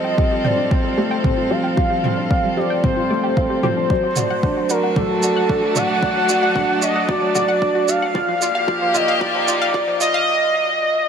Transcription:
Already playing: analog synth bass F1, string quartet G3 C4 F4 A4, felt piano C5, soft synth lead D#5
0.04 synth arpeggio sound G5
0.17 felt piano C4, synth arpeggio sound G4, kick
0.31 synth arpeggio sound G4
0.44 felt piano C5, soft synth lead D5, synth arpeggio sound G5, mid tom
0.58 synth arpeggio sound D4
0.71 felt piano C4, soft synth lead C5, synth arpeggio sound D5, kick
0.85 synth arpeggio sound G3
0.98 felt piano A3, synth arpeggio sound G4
1.11 synth arpeggio sound G5
1.24 felt piano C4, synth arpeggio sound G4, kick, mid tom
1.37 synth arpeggio sound F4
1.50 felt piano F3, synth arpeggio sound G4, soft synth lead F5
1.64 synth arpeggio sound G5
1.77 felt piano F3, synth arpeggio sound G4, kick
1.90 synth arpeggio sound G4
2.04 felt piano C5, synth arpeggio sound G5, mid tom
2.17 synth arpeggio sound D4
2.30 felt piano C4, synth arpeggio sound D5, kick
2.44 synth arpeggio sound G3
2.57 synth arpeggio sound G4, felt piano C5, soft synth lead D5
2.70 synth arpeggio sound G5
2.83 felt piano C4, synth arpeggio sound G4, soft synth lead C5, kick, mid tom
2.97 synth arpeggio sound F4
3.10 felt piano A3, synth arpeggio sound D5
3.24 synth arpeggio sound G4
3.37 felt piano C4, synth arpeggio sound F4, kick
3.50 synth arpeggio sound G4
3.63 felt piano F3, synth arpeggio sound G4, soft synth lead C5, mid tom
3.77 synth arpeggio sound D4
3.90 analog synth bass D2, felt piano F#3, string quartet F#3, synth arpeggio sound D5, kick
4.03 synth arpeggio sound F#3
4.09 string quartet A3
4.16 synth arpeggio sound F#4, felt piano D5, mid tom, shaker
4.30 synth arpeggio sound F#5
4.43 felt piano D4, synth arpeggio sound F#4, kick
4.57 synth arpeggio sound F#4
4.65 string quartet D4
4.69 string quartet F#4, synth arpeggio sound F#4, soft synth lead A#4, felt piano D5, shaker
4.83 synth arpeggio sound F#5
4.96 felt piano F#3, soft synth lead A4, synth arpeggio sound D5, kick, mid tom
5.10 synth arpeggio sound F#3
5.23 synth arpeggio sound F#4, felt piano D5, shaker
5.36 synth arpeggio sound F#5
5.49 felt piano D4, synth arpeggio sound F#4, kick
5.63 synth arpeggio sound F#4
5.76 synth arpeggio sound F#4, felt piano D5, soft synth lead F#5, mid tom, shaker
5.90 synth arpeggio sound F#5
6.03 felt piano F#3, synth arpeggio sound D5, kick
6.16 synth arpeggio sound F#3
6.29 synth arpeggio sound F#4, felt piano D5, shaker
6.43 synth arpeggio sound F#5
6.55 felt piano D4, synth arpeggio sound F#4, kick, mid tom
6.69 synth arpeggio sound F#4
6.82 synth arpeggio sound F#4, felt piano D5, soft synth lead D#5, shaker
6.96 synth arpeggio sound F#5
7.08 felt piano F#3, synth arpeggio sound D5, soft synth lead D5, kick
7.22 synth arpeggio sound F#3
7.35 synth arpeggio sound F#4, felt piano D5, mid tom, shaker
7.48 synth arpeggio sound F#5
7.61 felt piano D4, synth arpeggio sound F#4, kick
7.75 synth arpeggio sound F#4
7.88 synth arpeggio sound F#4, felt piano D5, soft synth lead F5, shaker
8.02 synth arpeggio sound F#5
8.14 analog synth bass C2, felt piano F3, string quartet F3, synth arpeggio sound D5, kick, mid tom
8.29 synth arpeggio sound F3
8.40 string quartet A#3, synth arpeggio sound F4, felt piano D5, shaker
8.46 string quartet G4
8.55 synth arpeggio sound F5
8.67 felt piano F3, synth arpeggio sound D5, kick
8.82 synth arpeggio sound F3
8.94 synth arpeggio sound F4, felt piano D5, soft synth lead D#5, mid tom, shaker
9.08 string quartet D#4, synth arpeggio sound F5
9.21 felt piano F3, soft synth lead D5, synth arpeggio sound D5, kick
9.35 synth arpeggio sound F3
9.47 synth arpeggio sound F4, felt piano D5, shaker
9.62 synth arpeggio sound F5
9.74 felt piano F3, synth arpeggio sound D5, kick, mid tom
9.88 synth arpeggio sound F3
10.00 synth arpeggio sound F4, felt piano D5, soft synth lead D#5, shaker
10.14 synth arpeggio sound F5

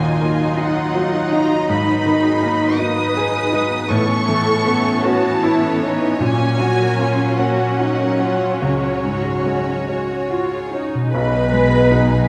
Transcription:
Already playing: grand piano D#2 A#2, harp D#3 F#3 D#4 G#4, viola section F#3 D#4, cello section F4, violin section D#5 G#5
0.03 violin section D#4
0.20 violin section A#3, grand piano A#3, harp A#4
0.39 violin section D#4
0.56 grand piano D#4, violin section F#4, harp D#5
0.60 violin section F#5
0.75 violin section D#4
0.95 grand piano F#3, violin section A#3
1.13 violin section D#4
1.31 harp D#4, grand piano D#4, violin section F#4 A#5
1.49 violin section D#4
1.69 harp G#2, grand piano G#2, violin section A#3 B5, cello section D#4
1.87 violin section B3
2.06 grand piano D#3, harp B3, violin section D#4
2.24 violin section G#4
2.43 grand piano A#3, violin section D#4, harp D#4
2.62 violin section B3
2.78 violin section A#3 D#6, grand piano D#4, cello section B4, harp A#5
2.98 violin section B3
3.16 harp D#4, violin section D#4, grand piano G#4
3.35 violin section G#4
3.52 harp G#3, violin section D#4, grand piano D#4
3.70 violin section B3
3.90 grand piano A2, harp A2, viola section E3 B3, violin section B3 C#5 C#6, cello section A4
4.07 violin section C#4
4.26 grand piano E3, harp B3, violin section E4
4.45 violin section A4
4.62 violin section E4
4.67 grand piano B3, harp C#4
4.83 violin section C#4
5.03 violin section B3 A5, grand piano C#4, cello section F#4, harp B4
5.23 violin section C#4
5.43 harp C#4, grand piano E4, violin section E4, cello section E4
5.63 violin section A4
5.81 harp B3, grand piano C#4, cello section D#4, violin section E4
5.99 violin section C#4
6.19 harp A#2, grand piano A#2, viola section F#3 C#4, violin section A#3 G#5, cello section C#4
6.38 violin section C#4
6.58 grand piano F#3, harp A#3, violin section F#4, cello section F#4
6.78 violin section A#4
6.99 grand piano A#3, harp C#4, cello section F4, violin section F#4
7.19 violin section C#4
7.39 violin section A#3 F#5, grand piano C#4, cello section F#4, harp A#4
7.59 violin section C#4
7.79 harp C#4, cello section D#4, violin section F#4, grand piano F#4
7.99 violin section A#4
8.19 harp A#3, grand piano C#4, cello section F4, violin section F#4
8.39 violin section C#4
8.60 grand piano C#2, harp C#3, violin section G#3 C#5, cello section F#4
8.82 violin section C#4
9.02 grand piano G#2, harp C#4, violin section F#4
9.24 violin section G#4
9.44 grand piano G#3, harp F#4, violin section F#4
9.67 violin section C#4
9.87 violin section G#3, grand piano C#4, viola section F#4, harp C#5
10.12 violin section C#4
10.29 viola section F4, harp F#4, grand piano F#4, violin section F#4
10.53 violin section G#4
10.71 harp C#4, grand piano C#4, viola section D#4, violin section F#4
10.94 harp B2, violin section C#4
10.98 harp G#3
11.03 harp D#4
11.08 harp F#4
11.12 double bass section B1, grand piano B1, cello section B2, french horn section B3, violin section D#4 G#4 B5, clarinet B4, viola section B4, flute section D#5
11.52 grand piano G#3
11.91 grand piano D#4

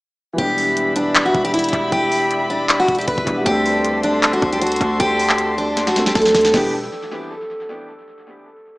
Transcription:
0.33 grand piano E3 G3
0.38 808-style bass E1, grand piano B3 D4, steel-string acoustic guitar G4, string section G4 D5 E5 B5, kick, closed hi-hat
0.44 grand piano G4
0.58 open hi-hat
0.77 closed hi-hat
0.96 steel-string acoustic guitar D4, closed hi-hat
1.15 clap, closed hi-hat
1.25 steel-string acoustic guitar F#4
1.35 808-style bass E1, kick, closed hi-hat
1.44 steel-string acoustic guitar G4, closed hi-hat
1.54 steel-string acoustic guitar E4, closed hi-hat
1.59 closed hi-hat
1.64 closed hi-hat
1.69 closed hi-hat
1.73 808-style bass E1, kick, closed hi-hat
1.92 808-style bass E1, steel-string acoustic guitar G4, kick, closed hi-hat
2.12 open hi-hat
2.31 closed hi-hat
2.50 steel-string acoustic guitar D4
2.69 clap, closed hi-hat
2.80 steel-string acoustic guitar F#4
2.88 808-style bass E1, kick, closed hi-hat
2.95 steel-string acoustic guitar G4, closed hi-hat
3.01 closed hi-hat
3.07 808-style bass E1, steel-string acoustic guitar B4, kick, closed hi-hat
3.18 808-style bass E1, kick
3.24 808-style bass E1, grand piano E3 G3 B3 D4, kick, closed hi-hat
3.30 grand piano G4
3.41 grand piano G3 A3
3.46 808-style bass D2, grand piano C4 D4, steel-string acoustic guitar G4, string section A4 A5 C6, kick, closed hi-hat
3.51 grand piano A4
3.66 open hi-hat
3.85 closed hi-hat
4.03 steel-string acoustic guitar D4, closed hi-hat
4.23 clap, closed hi-hat
4.33 steel-string acoustic guitar F#4
4.42 808-style bass D2, kick, closed hi-hat
4.53 steel-string acoustic guitar G4, closed hi-hat
4.61 steel-string acoustic guitar F#4, closed hi-hat
4.67 closed hi-hat
4.72 closed hi-hat
4.76 closed hi-hat
4.81 808-style bass D2, kick, closed hi-hat
5.00 808-style bass D2, steel-string acoustic guitar G4, kick, closed hi-hat
5.19 open hi-hat
5.29 clap
5.38 closed hi-hat
5.58 steel-string acoustic guitar D4
5.77 snare, closed hi-hat
5.87 steel-string acoustic guitar F#4, snare
5.94 grand piano G3 A3 C4 D4, snare, closed hi-hat
5.99 grand piano A4
6.06 steel-string acoustic guitar G4, snare
6.15 808-style bass D2, steel-string acoustic guitar A4, kick, snare, closed hi-hat
6.22 snare, closed hi-hat
6.28 closed hi-hat
6.35 808-style bass D2, snare, closed hi-hat
6.41 snare, closed hi-hat
6.47 closed hi-hat
6.54 808-style bass E1, grand piano E3 B3 D4 G4, string section E4 B4 D5 G5, steel-string acoustic guitar G4, kick, snare, crash

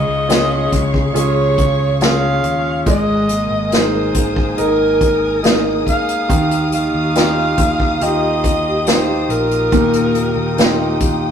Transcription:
Already playing: grand piano C#3, steel-string acoustic guitar C#3 G#3 F4, string section G#4 F5 C#6, alto saxophone D#5
0.08 fingered electric bass C#2
0.28 grand piano C#4 F4 G#4, steel-string acoustic guitar G#4, snare, closed hi-hat
0.72 fingered electric bass C#2, steel-string acoustic guitar G#3, kick, closed hi-hat
0.94 kick
1.13 fingered electric bass C#2, grand piano C#4 F4 G#4, alto saxophone C#5, closed hi-hat
1.58 kick, closed hi-hat
2.01 steel-string acoustic guitar G#3 F4 G#4, grand piano C#4 F4 G#4, alto saxophone F5, snare, closed hi-hat
2.43 fingered electric bass D#2, closed hi-hat
2.86 fingered electric bass G#1, steel-string acoustic guitar G#3, grand piano G#3, string section A#4 G#5 D#6, alto saxophone D#5, kick, closed hi-hat
3.29 steel-string acoustic guitar A#3, closed hi-hat
3.50 fingered electric bass G#1
3.72 grand piano D#4 G#4 A#4, steel-string acoustic guitar G#4, alto saxophone C5, snare, closed hi-hat
4.14 fingered electric bass G#1, steel-string acoustic guitar A#3, kick, closed hi-hat
4.36 kick
4.57 fingered electric bass G#1, grand piano D#4 G#4 A#4, alto saxophone A#4, closed hi-hat
5.01 kick, closed hi-hat
5.43 steel-string acoustic guitar A#3 D#4 G#4, grand piano D#4 G#4 A#4, snare, closed hi-hat
5.87 alto saxophone F5, kick, closed hi-hat
6.09 closed hi-hat
6.29 fingered electric bass D#2, grand piano D#3, steel-string acoustic guitar D#3, string section G4 F5, kick, closed hi-hat
6.51 closed hi-hat
6.72 steel-string acoustic guitar A#3, alto saxophone F5, closed hi-hat
6.93 fingered electric bass D#2
7.15 grand piano D#4 F4 G4, steel-string acoustic guitar G4, snare, closed hi-hat
7.58 fingered electric bass D#2, steel-string acoustic guitar A#3, kick, closed hi-hat
7.80 kick
8.01 fingered electric bass D#2, grand piano D#4 F4 G4, alto saxophone D#5, closed hi-hat
8.44 kick, closed hi-hat
8.87 steel-string acoustic guitar A#3 F4 G4, grand piano D#4 F4 G4, alto saxophone C5, snare, closed hi-hat
9.29 fingered electric bass A#1, alto saxophone A#4, closed hi-hat
9.51 closed hi-hat
9.72 fingered electric bass D#2, grand piano A#2, steel-string acoustic guitar D#3, string section G5, kick, closed hi-hat
9.93 closed hi-hat
10.15 steel-string acoustic guitar A#3, closed hi-hat
10.36 fingered electric bass D#2
10.58 grand piano D#4 F4 G4, steel-string acoustic guitar G4, snare, closed hi-hat
11.00 fingered electric bass D#2, steel-string acoustic guitar A#3, kick, closed hi-hat

